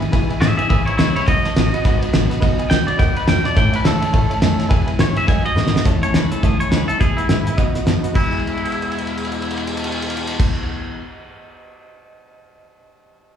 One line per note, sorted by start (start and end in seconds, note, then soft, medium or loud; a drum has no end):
0.00 0.13 E3 soft
0.00 0.13 G#3 medium
0.00 0.13 B3 soft
0.00 0.13 E4 medium
0.00 0.08 E5 medium
0.00 0.08 G#5 medium
0.00 muted upright bass stroke medium
0.00 ride medium
0.12 0.30 E2 medium
0.12 0.29 B2 medium
0.12 0.30 B2 medium
0.12 0.31 E3 loud
0.12 0.31 G#3 loud
0.12 0.29 B3 loud
0.12 0.28 E4 loud
0.12 0.23 B4 loud
0.12 0.23 E5 loud
0.12 0.23 G#5 loud
0.12 kick loud
0.12 ride medium
0.29 0.41 E3 soft
0.29 0.41 G#3 medium
0.29 0.41 B3 medium
0.29 0.41 E4 medium
0.29 0.37 B4 medium
0.29 0.37 E5 medium
0.29 0.37 G#5 loud
0.29 muted upright bass stroke medium
0.29 ride medium
0.41 0.58 E2 medium
0.41 0.57 A2 loud
0.41 0.59 B2 medium
0.41 0.59 E3 medium
0.41 0.59 G#3 medium
0.41 0.57 B3 medium
0.41 0.57 E4 loud
0.41 0.56 G#4 medium
0.41 0.51 B4 medium
0.41 0.52 E5 medium
0.41 0.56 E5 medium
0.41 0.52 G#5 medium
0.41 snare loud
0.41 ride medium
0.57 0.68 E3 medium
0.57 0.69 G#3 soft
0.57 0.70 B3 medium
0.57 0.70 E4 medium
0.57 0.68 G#4 medium
0.57 0.65 B4 medium
0.57 0.68 E5 loud
0.57 0.65 E5 medium
0.57 0.66 G#5 medium
0.57 muted upright bass stroke medium
0.57 ride medium
0.69 0.86 G#2 medium
0.69 0.87 E3 medium
0.69 0.87 G#3 medium
0.69 0.87 B3 medium
0.69 0.86 E4 medium
0.69 0.85 G#4 medium
0.69 0.80 B4 loud
0.69 0.85 E5 medium
0.69 0.80 E5 loud
0.69 0.81 G#5 loud
0.69 kick loud
0.69 ride medium
0.85 0.98 G#3 soft
0.85 0.98 B3 soft
0.85 0.96 E4 medium
0.85 0.99 E4 soft
0.85 0.94 B4 medium
0.85 0.97 C#5 medium
0.85 0.94 E5 medium
0.85 0.95 F#5 medium
0.85 muted upright bass stroke medium
0.85 ride medium
0.90 0.98 E3 soft
0.97 1.15 C#2 medium
0.97 1.15 E2 medium
0.97 1.16 B2 medium
0.97 1.16 E3 medium
0.97 1.15 G#3 medium
0.97 1.15 B3 medium
0.97 1.14 E4 medium
0.97 1.13 E4 medium
0.97 1.09 B4 medium
0.97 1.15 C#5 loud
0.97 1.09 E5 medium
0.97 1.09 G#5 medium
0.97 snare loud
0.97 ride medium
1.15 1.26 E3 soft
1.15 1.27 G#3 soft
1.15 1.26 B3 medium
1.15 1.27 E4 medium
1.15 1.26 E4 medium
1.15 1.22 B4 medium
1.15 1.27 C#5 loud
1.15 1.23 E5 medium
1.15 1.23 B5 medium
1.15 muted upright bass stroke medium
1.15 ride medium
1.26 1.44 B1 medium
1.26 1.44 B2 medium
1.26 1.44 F#3 medium
1.26 1.44 B3 loud
1.26 1.43 D#4 medium
1.26 1.42 F#4 medium
1.26 1.38 B4 medium
1.26 2.11 D#5 loud
1.26 1.38 D#5 medium
1.26 1.38 F#5 loud
1.26 kick loud
1.26 ride medium
1.43 1.56 B3 soft
1.43 1.56 D#4 soft
1.43 1.55 F#4 medium
1.43 1.51 B4 medium
1.43 1.51 D#5 medium
1.43 1.52 A5 medium
1.43 muted upright bass stroke medium
1.43 snare soft
1.43 ride medium
1.56 1.73 A1 loud
1.56 1.73 B2 medium
1.56 1.73 F#3 medium
1.56 1.74 B3 medium
1.56 1.73 D#4 medium
1.56 1.71 F#4 loud
1.56 1.66 B4 medium
1.56 1.67 D#5 medium
1.56 1.67 F#5 medium
1.56 snare loud
1.56 ride loud
1.72 1.84 B3 medium
1.72 1.85 D#4 medium
1.72 1.84 F#4 medium
1.72 1.80 B4 medium
1.72 1.80 D#5 medium
1.72 1.81 F#5 loud
1.72 ride medium
1.84 2.01 G#1 medium
1.84 2.01 F#3 medium
1.84 2.02 B3 medium
1.84 2.02 D#4 medium
1.84 2.00 F#4 medium
1.84 1.95 B4 loud
1.84 1.95 D#5 loud
1.84 1.95 F#5 loud
1.84 kick medium
1.84 snare soft
1.84 ride medium
2.01 2.13 B3 soft
2.01 2.13 D#4 soft
2.01 2.13 F#4 medium
2.01 2.08 B4 medium
2.01 2.08 D#5 medium
2.01 2.09 F#5 medium
2.01 muted upright bass stroke medium
2.01 ride medium
2.13 2.30 A1 loud
2.13 2.30 B2 loud
2.13 2.31 F#3 loud
2.13 2.31 B3 loud
2.13 2.30 D#4 loud
2.13 2.28 F#4 loud
2.13 2.23 B4 medium
2.13 2.23 D#5 medium
2.13 2.24 F#5 loud
2.13 snare loud
2.13 ride medium
2.29 2.41 B3 soft
2.29 2.42 D#4 medium
2.29 2.41 F#4 medium
2.29 2.37 B4 medium
2.29 2.37 D#5 medium
2.29 2.37 F#5 loud
2.29 snare soft
2.29 ride medium
2.40 2.59 B1 medium
2.40 2.59 B2 loud
2.40 2.59 F#3 medium
2.40 2.59 B3 medium
2.40 2.59 D#4 loud
2.40 2.57 F#4 loud
2.40 2.51 B4 loud
2.40 2.52 D#5 loud
2.40 2.52 F#5 loud
2.40 kick loud
2.40 ride medium
2.58 2.71 B3 soft
2.58 2.71 D#4 medium
2.58 2.70 F#4 medium
2.58 2.65 B4 medium
2.58 2.66 D#5 medium
2.58 2.66 G#5 loud
2.58 muted upright bass stroke medium
2.58 ride medium
2.70 2.87 C#2 medium
2.70 2.88 B2 medium
2.70 2.88 F#3 medium
2.70 2.88 B3 medium
2.70 2.88 D#4 medium
2.70 2.86 F#4 medium
2.70 2.80 B4 medium
2.70 2.81 F#5 medium
2.70 2.87 G5 loud
2.70 snare loud
2.70 ride medium
2.87 2.99 B3 soft
2.87 3.00 D#4 medium
2.87 2.99 F#4 medium
2.87 2.94 B4 medium
2.87 2.98 D5 loud
2.87 2.94 D#5 medium
2.87 2.94 F#5 medium
2.87 muted upright bass stroke medium
2.87 ride medium
2.98 3.16 D#2 medium
2.98 3.16 F#3 medium
2.98 3.17 B3 medium
2.98 3.16 D#4 medium
2.98 3.09 B4 loud
2.98 3.09 D#5 medium
2.98 3.09 F#5 loud
2.98 3.16 G5 loud
2.98 kick loud
2.98 snare soft
2.98 ride medium
3.02 3.14 F#4 medium
3.14 3.28 D#4 soft
3.14 3.27 F#4 soft
3.14 3.22 B4 medium
3.14 3.28 B4 loud
3.14 3.23 D#5 medium
3.14 3.23 F#5 medium
3.14 muted upright bass stroke medium
3.14 ride medium
3.19 3.27 B3 soft
3.26 3.44 F#2 loud
3.26 3.45 B2 medium
3.26 3.45 F#3 medium
3.26 3.45 B3 medium
3.26 3.44 D#4 medium
3.26 3.43 F#4 loud
3.26 3.37 B4 medium
3.26 3.37 D#5 medium
3.26 3.45 G5 loud
3.26 3.38 A5 medium
3.26 snare loud
3.26 ride medium
3.43 3.56 B3 soft
3.43 3.57 D#4 soft
3.43 3.56 F#4 medium
3.43 3.51 B4 medium
3.43 3.56 D5 medium
3.43 3.51 D#5 medium
3.43 3.51 A5 medium
3.43 muted upright bass stroke medium
3.43 snare soft
3.43 ride medium
3.55 3.73 A2 medium
3.55 3.73 E3 medium
3.55 3.74 A3 loud
3.55 3.73 C#4 loud
3.55 3.71 E4 medium
3.55 3.66 C#5 loud
3.55 3.66 E5 medium
3.55 3.73 G5 medium
3.55 3.66 A5 loud
3.55 kick loud
3.55 snare soft
3.55 ride medium
3.72 3.84 A3 soft
3.72 3.85 C#4 soft
3.72 3.84 E4 medium
3.72 3.86 B4 loud
3.72 3.79 C#5 medium
3.72 3.80 E5 medium
3.72 3.80 F#5 medium
3.72 muted upright bass stroke medium
3.72 ride medium
3.83 4.02 A2 medium
3.83 4.02 C#3 loud
3.83 4.02 E3 medium
3.83 4.02 A3 medium
3.83 4.01 C#4 medium
3.83 4.00 E4 medium
3.83 4.69 A4 loud
3.83 3.94 C#5 medium
3.83 3.95 E5 medium
3.83 3.95 A5 medium
3.83 snare loud
3.83 ride loud
4.01 4.13 A3 soft
4.01 4.13 C#4 medium
4.01 4.13 E4 medium
4.01 4.08 C#5 medium
4.01 4.09 E5 medium
4.01 4.09 A5 loud
4.01 muted upright bass stroke medium
4.01 ride medium
4.12 4.30 A2 medium
4.12 4.30 E3 medium
4.12 4.31 A3 medium
4.12 4.31 C#4 medium
4.12 4.29 E4 medium
4.12 4.23 C#5 loud
4.12 4.23 E5 medium
4.12 4.24 A5 loud
4.12 kick medium
4.12 ride medium
4.29 4.42 A3 soft
4.29 4.42 C#4 medium
4.29 4.42 E4 medium
4.29 4.37 C#5 medium
4.29 4.37 E5 medium
4.29 4.38 A5 medium
4.29 muted upright bass stroke medium
4.29 ride medium
4.41 4.59 F#2 loud
4.41 4.59 A2 loud
4.41 4.60 E3 medium
4.41 4.60 A3 loud
4.41 4.60 C#4 loud
4.41 4.58 E4 loud
4.41 4.52 C#5 medium
4.41 4.52 E5 medium
4.41 4.53 A5 medium
4.41 snare loud
4.41 ride medium
4.58 4.72 C#4 medium
4.58 4.71 E4 medium
4.58 4.66 C#5 medium
4.58 4.66 E5 medium
4.58 4.66 A5 medium
4.58 muted upright bass stroke medium
4.58 snare soft
4.58 ride medium
4.63 4.71 A3 soft
4.69 4.88 E2 loud
4.69 4.87 E2 medium
4.69 4.88 B2 loud
4.69 4.88 E3 loud
4.69 4.88 G#3 loud
4.69 4.87 B3 loud
4.69 4.87 E4 loud
4.69 4.80 B4 loud
4.69 4.80 E5 loud
4.69 4.81 G#5 loud
4.69 kick loud
4.69 ride medium
4.86 4.99 G#3 medium
4.86 5.00 B3 medium
4.86 4.99 E4 medium
4.86 4.94 B4 medium
4.86 4.94 E5 medium
4.86 4.95 G#5 loud
4.86 muted upright bass stroke medium
4.86 ride medium
4.91 4.99 E3 soft
4.99 5.17 E2 medium
4.99 5.16 G#2 loud
4.99 5.17 B2 medium
4.99 5.17 E3 medium
4.99 5.17 G#3 medium
4.99 5.16 B3 medium
4.99 5.15 E4 medium
4.99 5.09 B4 medium
4.99 5.17 C#5 medium
4.99 5.09 E5 medium
4.99 5.10 G#5 medium
4.99 snare loud
4.99 ride medium
5.16 5.26 E3 soft
5.16 5.28 G#3 medium
5.16 5.27 B3 medium
5.16 5.28 E4 medium
5.16 5.23 B4 medium
5.16 5.23 E5 medium
5.16 5.28 E5 loud
5.16 5.23 G#5 medium
5.16 muted upright bass stroke medium
5.16 ride medium
5.26 5.44 F#2 medium
5.26 5.44 F#3 medium
5.26 5.45 B3 medium
5.26 5.45 D#4 medium
5.26 5.43 F#4 medium
5.26 5.38 B4 loud
5.26 5.38 D#5 medium
5.26 5.38 F#5 loud
5.26 5.45 G#5 medium
5.26 kick loud
5.26 snare soft
5.26 ride medium
5.44 5.56 B3 soft
5.44 5.56 D#4 soft
5.44 5.56 F#4 soft
5.44 5.51 B4 medium
5.44 5.52 D#5 medium
5.44 5.84 D#5 loud
5.44 5.52 F#5 medium
5.44 muted upright bass stroke medium
5.44 ride medium
5.56 5.73 G#2 medium
5.56 5.74 B2 medium
5.56 5.74 F#3 medium
5.56 5.74 B3 medium
5.56 5.74 D#4 medium
5.56 5.72 F#4 medium
5.56 5.67 B4 medium
5.56 5.67 D#5 medium
5.56 5.67 F#5 medium
5.56 snare medium
5.67 snare medium
5.73 5.85 B3 soft
5.73 5.85 F#4 soft
5.73 5.80 B4 medium
5.73 5.80 D#5 medium
5.73 5.81 F#5 medium
5.73 muted upright bass stroke medium
5.73 snare loud
5.85 6.02 E2 medium
5.85 6.02 A2 loud
5.85 6.02 E3 medium
5.85 6.03 A3 loud
5.85 6.02 C#4 medium
5.85 6.00 E4 loud
5.85 5.96 C#5 loud
5.85 5.96 E5 loud
5.85 5.96 A5 loud
5.85 kick loud
5.85 snare soft
5.85 closed hi-hat medium
6.01 6.13 A3 soft
6.01 6.14 C#4 soft
6.01 6.13 E4 medium
6.01 6.10 C#5 medium
6.01 6.15 C#5 medium
6.01 6.10 E5 medium
6.01 6.10 A5 medium
6.01 muted upright bass stroke medium
6.01 closed hi-hat medium
6.13 6.30 C#2 medium
6.13 6.31 E3 medium
6.13 6.31 A3 medium
6.13 6.31 C#4 medium
6.13 6.30 E4 medium
6.13 6.31 B4 medium
6.13 6.25 C#5 medium
6.13 6.25 E5 medium
6.13 6.25 A5 medium
6.13 snare loud
6.13 closed hi-hat medium
6.31 6.43 A3 soft
6.31 6.43 C#4 medium
6.31 6.43 E4 medium
6.31 6.43 A4 medium
6.31 6.38 C#5 medium
6.31 6.38 E5 medium
6.31 6.38 B5 medium
6.31 muted upright bass stroke medium
6.31 closed hi-hat medium
6.43 6.59 B1 medium
6.43 6.60 A2 medium
6.43 6.60 E3 medium
6.43 6.61 A3 medium
6.43 6.60 C#4 loud
6.43 6.58 E4 medium
6.43 6.60 G#4 loud
6.43 6.53 C#5 loud
6.43 6.53 E5 loud
6.43 6.54 A5 loud
6.43 kick loud
6.43 closed hi-hat medium
6.59 6.71 A3 soft
6.59 6.72 C#4 soft
6.59 6.71 E4 medium
6.59 6.71 C#5 medium
6.59 6.67 C#5 medium
6.59 6.67 E5 medium
6.59 6.68 B5 medium
6.59 muted upright bass stroke medium
6.59 closed hi-hat medium
6.71 6.88 C#2 loud
6.71 6.88 E3 medium
6.71 6.89 A3 medium
6.71 6.89 C#4 medium
6.71 6.87 E4 medium
6.71 6.88 B4 medium
6.71 6.82 C#5 medium
6.71 6.82 E5 medium
6.71 6.82 F#5 medium
6.71 snare loud
6.71 closed hi-hat medium
6.87 7.01 A3 soft
6.87 7.01 C#4 soft
6.87 7.00 E4 medium
6.87 6.99 A4 medium
6.87 6.95 C#5 medium
6.87 6.95 E5 medium
6.87 6.96 A5 medium
6.87 muted upright bass stroke medium
6.87 closed hi-hat medium
6.99 7.17 E2 loud
6.99 7.18 B2 medium
6.99 7.18 E3 medium
6.99 7.18 G#3 medium
6.99 7.17 B3 medium
6.99 7.16 E4 medium
6.99 7.17 G#4 medium
6.99 7.10 B4 medium
6.99 7.10 E5 medium
6.99 7.10 G#5 medium
6.99 kick loud
6.99 closed hi-hat medium
7.17 7.27 E3 soft
7.17 7.29 G#3 medium
7.17 7.29 B3 medium
7.17 7.56 E4 loud
7.17 7.29 E4 medium
7.17 7.24 B4 medium
7.17 7.24 E5 medium
7.17 7.25 F#5 medium
7.17 muted upright bass stroke soft
7.17 closed hi-hat medium
7.28 7.46 G#2 loud
7.28 7.46 E3 medium
7.28 7.47 G#3 medium
7.28 7.46 B3 medium
7.28 7.44 E4 medium
7.28 7.39 B4 medium
7.28 7.39 E5 medium
7.28 7.39 G#5 medium
7.28 snare loud
7.28 closed hi-hat medium
7.46 7.58 E3 soft
7.46 7.58 G#3 medium
7.46 7.58 B3 soft
7.46 7.57 E4 medium
7.46 7.53 B4 medium
7.46 7.53 E5 medium
7.46 7.53 G#5 medium
7.46 muted upright bass stroke medium
7.46 closed hi-hat medium
7.57 7.75 B2 medium
7.57 7.74 B2 medium
7.57 7.75 F#3 loud
7.57 7.75 B3 loud
7.57 7.75 D#4 medium
7.57 7.73 F#4 loud
7.57 7.68 B4 loud
7.57 7.68 D#5 loud
7.57 7.68 F#5 loud
7.57 kick loud
7.57 closed hi-hat medium
7.74 7.86 B3 soft
7.74 7.87 D#4 medium
7.74 7.86 F#4 medium
7.74 7.82 B4 medium
7.74 7.82 D#5 medium
7.74 7.82 F#5 medium
7.74 muted upright bass stroke medium
7.74 snare soft
7.74 closed hi-hat medium
7.86 8.03 F#2 medium
7.86 8.03 F#3 medium
7.86 8.04 B3 medium
7.86 8.04 D#4 medium
7.86 8.02 F#4 medium
7.86 7.96 B4 medium
7.86 7.97 D#5 medium
7.86 7.97 A5 medium
7.86 snare loud
7.86 closed hi-hat medium
8.03 8.16 B3 soft
8.03 8.16 D#4 soft
8.03 8.15 F#4 medium
8.03 8.10 B4 medium
8.03 8.11 D#5 medium
8.03 8.11 F#5 medium
8.03 muted upright bass stroke medium
8.03 closed hi-hat medium
8.10 10.99 E2 medium
8.10 10.39 B4 medium
8.14 10.99 B2 medium
8.14 10.99 E3 medium
8.14 10.40 E4 medium
8.14 10.40 E5 medium
8.14 10.41 G#5 medium
8.14 kick loud
8.14 crash medium
8.20 10.99 G#3 loud
8.20 10.99 B3 medium
8.26 10.99 E4 medium
8.33 crash soft
8.39 ride soft
8.47 crash medium
8.57 ride medium
8.65 crash medium
8.72 ride medium
8.82 crash medium
8.92 ride medium
8.98 crash medium
9.07 ride medium
9.17 crash medium
9.25 ride medium
9.32 crash medium
9.42 ride medium
9.51 crash medium
9.57 ride medium
9.67 crash medium
9.77 ride medium
9.84 crash medium
9.92 ride medium
10.02 crash medium
10.10 ride medium
10.17 crash medium
10.27 ride loud
10.40 kick loud
10.40 crash loud